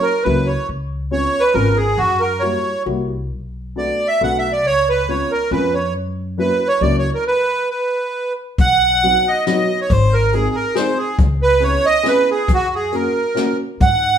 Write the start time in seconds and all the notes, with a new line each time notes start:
0.02 A#4
0.23 C#2 F#3 A#3 C#4 E4 B4
0.47 C#5
0.69 C#2
1.11 G#3 B3 C#4 F4 C#5
1.40 B4
1.54 G#1 G#3 B3 C#4 F4 A#4
1.76 G#4
1.98 F#2 F#4
2.20 A#4
2.40 G3 A#3 E4 F#4 C#5
2.86 C2 G3 A#3 E4 F#4
3.32 B1
3.76 A3 B3 D4 F#4 D5
4.08 E5
4.21 B1 A3 B3 D4 F#4 F#5
4.39 E5
4.52 D5
4.65 C#2 C#5
4.89 B4
5.08 G#3 B3 C#4 F4 C#5
5.31 A#4
5.51 F2 G#3 B3 C#4 F4 B4
5.74 C#5
5.94 F#2
6.37 F#3 A#3 C#4 E4 B4
6.68 C#5
6.81 C#2 F#3 A#3 C#4 E4 D5
6.99 C#5
7.15 A#4
7.27 B4
7.71 B4
8.58 B1 F#5, kick, closed hi-hat
9.02 F#3 B3 D#4 F#4, closed hi-hat
9.28 D#5
9.46 F#3 B3 D#4 F#4 D#5, snare, closed hi-hat
9.81 C#5
9.90 G#1 C5, kick, closed hi-hat
10.13 A#4
10.33 G#3 C4 D#4 G#4, closed hi-hat
10.55 A#4
10.75 G#3 C4 D#4 G#4 C5, snare, closed hi-hat
10.98 G#4
11.18 C#2, kick, closed hi-hat
11.42 B4
11.60 B3 C#4 E4 G#4 C#5, closed hi-hat
11.86 D#5
12.03 B3 C#4 E4 G#4, snare, closed hi-hat
12.08 B4
12.31 G#4
12.48 F#2, kick, closed hi-hat
12.54 F#4
12.75 G#4
12.92 A#3 C#4 F#4 A#4, closed hi-hat
13.34 A#3 C#4 F#4 A#4, snare, closed hi-hat
13.80 G#2 F#5, kick, closed hi-hat